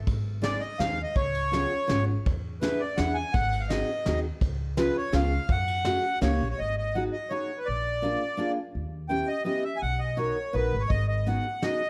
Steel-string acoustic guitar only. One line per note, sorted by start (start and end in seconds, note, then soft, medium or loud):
0.42 0.61 G#3 medium
0.42 0.61 C4 medium
0.42 0.62 D#4 medium
0.42 0.62 G#4 medium
0.79 0.97 G#3 medium
0.79 0.98 C4 medium
0.79 0.98 D#4 medium
0.79 0.99 G#4 medium
1.52 1.71 B3 medium
1.52 1.71 C#4 medium
1.52 1.71 F4 medium
1.52 1.72 G#4 medium
1.87 2.07 B3 medium
1.87 2.07 C#4 medium
1.87 2.08 F4 medium
1.87 2.08 G#4 medium
2.61 2.80 B3 medium
2.61 2.81 D4 medium
2.61 2.81 E4 medium
2.61 2.81 G#4 medium
2.98 3.17 B3 medium
2.98 3.17 D4 medium
2.98 3.17 E4 soft
2.98 3.17 G#4 medium
3.70 3.89 C4 medium
3.70 3.89 D#4 medium
3.70 3.89 F#4 medium
3.70 3.89 G#4 medium
4.06 4.24 C4 medium
4.06 4.25 D#4 medium
4.06 4.25 F#4 medium
4.06 4.25 G#4 medium
4.77 4.95 B3 medium
4.77 4.95 C#4 medium
4.77 4.96 F4 medium
4.77 4.96 G#4 medium
5.12 5.31 B3 soft
5.12 5.31 C#4 medium
5.12 5.31 F4 medium
5.12 5.32 G#4 medium
5.85 6.04 A3 medium
5.85 6.04 C#4 medium
5.85 6.04 F#4 medium
5.85 6.05 G#4 medium
6.21 6.41 A#3 medium
6.21 6.41 C#4 medium
6.21 6.41 D#4 medium
6.21 6.41 G4 medium
6.95 7.14 B3 medium
6.95 7.14 D#4 medium
6.95 7.14 F#4 medium
6.95 7.15 G#4 medium
7.30 7.49 B3 medium
7.30 7.50 D#4 medium
7.30 7.50 F#4 medium
7.30 7.50 G#4 medium
8.02 8.21 A#3 medium
8.02 8.21 D4 medium
8.02 8.22 F4 soft
8.02 8.22 G#4 medium
8.37 8.56 A#3 medium
8.37 8.57 D4 medium
8.37 8.57 F4 medium
8.37 8.57 G#4 medium
9.09 9.28 B3 medium
9.09 9.28 C#4 medium
9.09 9.28 E4 medium
9.09 9.28 G4 medium
9.44 9.63 B3 medium
9.44 9.63 C#4 medium
9.44 9.64 E4 medium
9.44 9.64 G4 medium
10.17 10.36 B3 medium
10.17 10.36 D#4 medium
10.17 10.36 F#4 medium
10.17 10.36 A#4 medium
10.53 10.72 B3 medium
10.53 10.73 D#4 medium
10.53 10.73 F#4 soft
10.53 10.73 A#4 medium
11.26 11.45 B3 medium
11.26 11.45 D#4 soft
11.26 11.46 F#4 medium
11.26 11.46 G#4 medium
11.62 11.81 B3 medium
11.62 11.81 D#4 medium
11.62 11.81 F#4 soft
11.62 11.82 G#4 medium